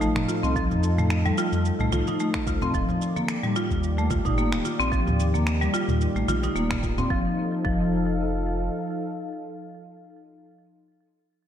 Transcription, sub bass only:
Already playing: A1
0.16 F1
0.43 C2
0.70 F2
1.52 F2
1.79 C2
1.92 C2
2.47 C2
2.74 D#1
3.70 D#2
4.25 G1
4.52 D#1
4.79 A#1
5.06 D#2
5.88 D#2
6.15 A#1
6.28 A#1
6.55 D#1
7.10 F1
7.65 F1

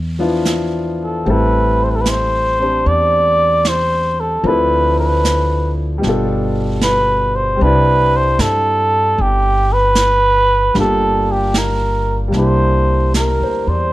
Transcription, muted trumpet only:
1.04 A4
1.30 B4
1.84 C5
1.91 B4
1.96 A4
2.01 B4
2.09 C5
2.87 D5
3.69 C5
4.20 A4
4.47 B4
4.99 B4
6.83 B4
7.36 C5
7.63 B4
8.16 C5
8.41 A4
9.21 G4
9.73 B4
10.80 A4
11.32 G4
11.58 A#4
12.38 C5
13.16 A#4
13.68 C5

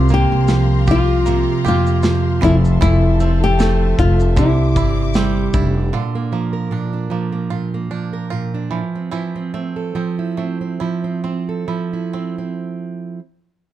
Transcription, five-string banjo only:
Already playing: F3 C4 G4
0.10 A#3
0.48 F4
0.87 G4
1.26 A#3
1.65 G4
2.03 F4
2.42 E3
2.81 E3 E4
3.20 A3
3.59 C4
4.36 D3
4.76 E4
5.15 C4
5.54 E4
5.93 D3 F4
6.33 A#3
6.72 D4
7.11 A#3
7.50 F4
7.91 D4
8.30 F4
8.71 E3
9.11 E3 E4
9.54 A3
9.96 C4
10.37 A3
10.80 E4
11.24 C4
11.68 E4
12.13 C4

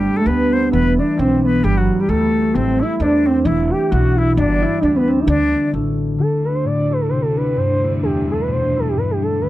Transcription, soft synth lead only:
Already playing: G3
0.19 A3
0.28 B3
0.73 B3
0.98 D4
1.19 C4
1.44 B3
1.63 G3
1.77 F#3
2.00 G3
2.09 A3
2.54 C4
2.81 E4
3.01 D4
3.26 C4
3.44 E4
3.70 G4
3.90 F#4
4.16 E4
4.37 D4
4.61 E4
4.80 D4
4.95 B3
5.07 C4
5.20 E4
5.27 D4
6.20 A4
6.45 B4
6.54 C5
6.66 D5
6.93 B4
7.01 A4
7.09 C5
7.22 A4
7.36 B4
7.57 C5
8.03 G4
8.31 A4
8.41 B4
8.51 C5
8.79 A4
8.88 G4
8.97 B4
9.11 G4
9.23 A4
9.41 B4

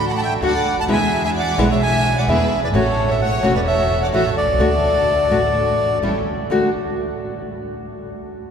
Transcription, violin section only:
0.13 F#5 G5
0.23 E5
0.44 D5
0.80 F#5
0.90 E5
1.24 E5
1.35 D5
1.69 C#5
1.81 E5
2.17 D5
2.30 B4
2.64 B4
2.75 A4
3.09 C#5
3.20 C#5
3.55 B4
3.65 C#5
4.03 D5
4.14 C#5
4.39 A4

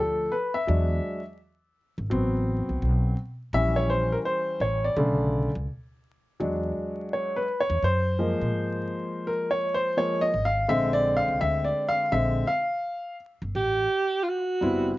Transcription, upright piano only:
Already playing: F3 A3 D4 A4
0.32 B4
0.54 E5
0.67 F#3 G#3 D4
2.10 F#3 B3 C4
3.54 E3 G3 C#4 E5
3.76 C#5
3.90 C5
4.12 A#4
4.25 C5
4.61 C#5
4.84 D5
4.96 C#3 D3 A3
6.40 F#3 G#3 D4
7.13 C#5
7.36 B4
7.60 C#5
7.84 C5
8.19 F3 G#3 A#3
9.27 A#4
9.51 C#5
9.74 C5
9.97 F3 G#3 A#3 C#5
10.21 D#5
10.45 F5
10.68 D3 G#3 C4 E5
10.93 D5
11.17 F5
11.41 E5
11.65 D5
11.89 F5
12.12 D3 G#3 C4 E5
12.47 F5
14.61 G3 B3 C4 E4

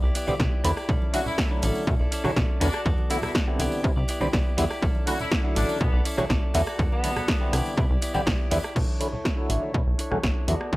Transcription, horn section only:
1.13 F#4
1.26 E4
2.61 D4
3.10 E4
3.23 E4
5.07 F#4
5.20 E4
5.56 D4
5.80 B3
6.92 B3

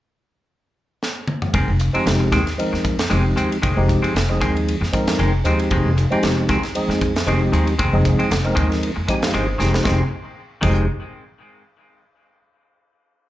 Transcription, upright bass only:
1.54 F1
1.68 F1
1.94 muted upright bass stroke
2.06 F1
2.32 D#2
2.73 F2
3.11 F1
3.37 D#2
3.63 F1
3.77 F1
4.03 muted upright bass stroke
4.15 F1
4.41 D#2
4.81 F2
5.19 F1
5.45 D#2
5.71 F1
5.85 F1
6.11 muted upright bass stroke
6.23 F1
6.49 D#2
6.89 F2
7.27 F1
7.52 D#2
7.79 F1
7.93 F1
8.20 muted upright bass stroke
8.31 F1
8.57 D#2
8.97 F2
9.34 G1
9.60 F1
9.85 F1
10.63 F1

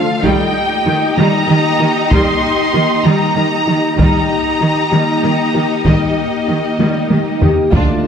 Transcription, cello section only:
0.23 D#3
0.86 D#3
1.18 D#3
1.49 D#3
1.80 D#3
2.11 D#3
2.74 D#3
3.05 D#3
3.36 D#3
3.67 D#3
3.98 D#3
4.60 D#3
4.92 D#3
5.23 D#3
5.55 D#3
5.86 D#3
6.49 D#3
6.79 D#3
7.10 D#3
7.42 D#3
7.73 D2

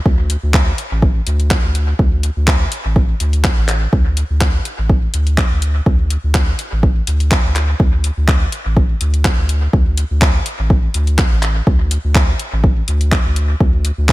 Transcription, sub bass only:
0.06 D2
0.43 D2
0.91 A1
1.27 D2
1.64 D2
1.99 D2
2.36 D2
2.85 A1
3.20 D2
3.57 A1
3.93 D2
4.30 D2
4.78 A1
5.14 D2
5.51 D2
5.86 D2
6.23 D2
6.72 A1
7.07 D2
7.44 D2
7.80 D2
8.17 D2
8.65 A1
9.01 D2
9.38 D2
9.73 D2
10.10 D2
10.59 A1
10.94 D2
11.31 A1
11.67 D2
12.04 D2
12.52 A1
12.88 D2
13.25 D2
13.60 D2
13.98 D2

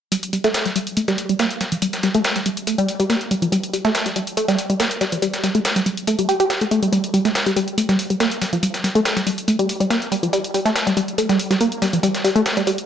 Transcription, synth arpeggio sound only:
0.12 G3
0.33 G3
0.44 A3
0.65 G3
0.76 G3
0.97 A3
1.08 G3
1.29 G3
1.40 A#3
1.61 G3
1.72 F3
1.82 G3
2.03 G3
2.15 A3
2.36 G3
2.46 G3
2.67 A3
2.78 G3
3.00 G3
3.10 A#3
3.31 G3
3.42 F3
3.52 G3
3.73 G3
3.85 A3
4.06 G3
4.16 G3
4.37 A3
4.48 G3
4.70 G3
4.80 A#3
5.01 G3
5.12 F3
5.22 G3
5.44 G3
5.55 A3
5.76 G3
5.86 G3
6.07 A3
6.19 G3
6.29 G4
6.40 G4
6.50 G4
6.61 A3
6.71 A3
6.82 G3
6.92 G3
7.14 G3
7.25 A3
7.46 G3
7.56 G3
7.78 A3
7.89 G3
8.10 G3
8.20 A#3
8.42 G3
8.53 F3
8.63 G3
8.84 G3
8.95 A3
9.17 G3
9.27 G3
9.48 A3
9.59 G3
9.80 G3
9.90 A#3
10.12 G3
10.23 F3
10.33 G3
10.54 G3
10.65 A3
10.87 G3
10.97 G3
11.18 A3
11.29 G3
11.51 G3
11.61 A#3
11.82 G3
11.93 F3
12.03 G3
12.24 G3
12.36 A3
12.57 G3
12.67 G3

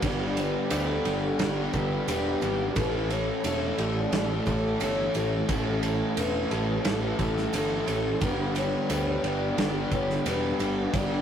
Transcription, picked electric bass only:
0.03 G1
0.71 D2
1.05 G1
1.39 G1
1.74 G1
2.08 E1
2.42 G#1
2.76 A1
3.44 E1
3.78 A1
4.12 A1
4.47 A1
4.81 G1
5.15 A1
5.49 A1
6.17 E1
6.51 A1
6.85 A1
7.19 A1
7.54 G1
7.87 A1
8.21 G1
8.90 D2
9.23 G1
9.58 G1
9.92 G1
10.26 E1
10.60 G1
10.93 G1

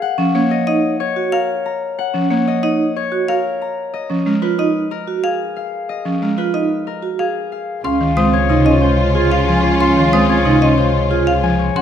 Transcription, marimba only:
0.18 F3
0.35 A#3
2.15 F3
2.31 A#3
4.10 F3
4.26 G#3
6.06 F3
6.22 G#3
8.01 D#3
8.17 G#3
8.50 C3
9.48 F3
9.97 D#3
10.13 G#3
10.45 C3
11.44 F3

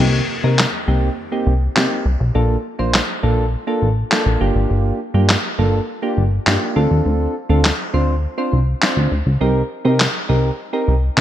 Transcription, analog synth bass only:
0.00 C2
0.44 C3
0.88 C2
1.47 C2
1.76 C3
2.06 C2
2.20 B1
2.35 A#1
2.79 A#1
3.23 A#1
3.82 A1
4.26 A#1
4.41 G1
4.55 G#1
4.70 G1
5.14 G2
5.58 G1
6.17 G1
6.47 G2
6.76 D2
6.91 D#2
7.06 D2
7.50 D2
7.94 D2
8.53 C2
8.97 D2
9.11 D2
9.26 C#2
9.41 C2
9.85 C3
10.29 C2
10.88 C2
11.17 C3

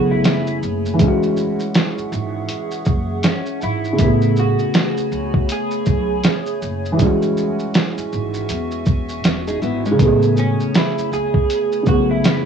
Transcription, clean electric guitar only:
Already playing: F#4
0.11 E4
3.26 C#4
3.63 E4
4.39 F#4
5.52 G#4
10.39 C#4
10.76 E4
11.13 G#4
11.88 F#4
12.11 E4

